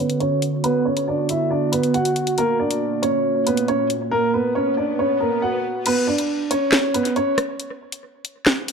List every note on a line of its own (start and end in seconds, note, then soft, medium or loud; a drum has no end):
0.00 2.34 D3 medium
0.00 0.17 B3 medium
0.00 2.34 B3 medium
0.00 5.82 F#4 medium
0.00 0.17 B4 medium
0.10 closed hi-hat medium
0.20 0.39 C#4 medium
0.20 0.39 C#5 medium
0.20 closed hi-hat soft
0.42 closed hi-hat medium
0.64 0.83 B3 medium
0.64 0.82 B4 loud
0.64 closed hi-hat medium
0.85 1.04 C#4 medium
0.85 1.04 C#5 medium
0.97 closed hi-hat medium
1.08 1.26 D4 medium
1.08 1.26 D5 medium
1.29 1.48 E4 medium
1.29 1.48 E5 medium
1.29 closed hi-hat medium
1.50 1.69 D4 medium
1.50 1.69 D5 medium
1.72 1.91 B3 medium
1.72 1.90 B4 medium
1.72 closed hi-hat medium
1.83 closed hi-hat medium
1.94 2.36 F#4 medium
1.94 2.35 F#5 medium
1.94 closed hi-hat medium
2.05 closed hi-hat medium
2.16 closed hi-hat medium
2.27 closed hi-hat medium
2.38 5.82 A#2 medium
2.38 5.82 A#3 medium
2.38 2.57 A#3 medium
2.38 2.56 A#4 loud
2.38 closed hi-hat medium
2.59 3.01 D4 medium
2.59 3.00 D5 medium
2.71 closed hi-hat medium
3.02 3.44 C#4 medium
3.02 3.44 C#5 medium
3.02 closed hi-hat medium
3.46 3.65 B3 medium
3.46 3.65 B4 medium
3.46 closed hi-hat medium
3.57 closed hi-hat medium
3.68 3.87 C#4 medium
3.68 3.87 C#5 medium
3.68 closed hi-hat soft
3.90 closed hi-hat medium
4.11 4.30 A#3 medium
4.11 4.30 A#4 loud
4.11 swell medium
4.34 4.52 B3 medium
4.34 4.52 B4 medium
4.55 4.74 C#4 medium
4.55 4.73 C#5 medium
4.77 4.96 D4 medium
4.77 4.95 D5 medium
4.99 5.18 C#4 medium
4.99 5.17 C#5 medium
5.20 5.39 A#3 medium
5.20 5.39 A#4 medium
5.42 5.83 F#4 medium
5.42 5.83 F#5 medium
5.86 6.05 B3 medium
5.86 6.04 B4 medium
5.86 closed hi-hat medium
5.86 crash medium
6.07 6.49 D4 medium
6.07 6.48 D5 medium
6.18 closed hi-hat medium
6.51 6.92 C#4 medium
6.51 6.92 C#5 medium
6.51 closed hi-hat medium
6.72 snare loud
6.72 clap medium
6.94 7.13 B3 medium
6.94 7.12 B4 medium
6.94 closed hi-hat medium
7.05 closed hi-hat medium
7.16 7.35 C#4 medium
7.16 7.34 C#5 medium
7.16 closed hi-hat soft
7.38 cross-stick loud
7.38 closed hi-hat medium
7.60 closed hi-hat medium
7.92 closed hi-hat medium
8.25 closed hi-hat medium
8.46 snare loud
8.46 clap medium
8.68 closed hi-hat medium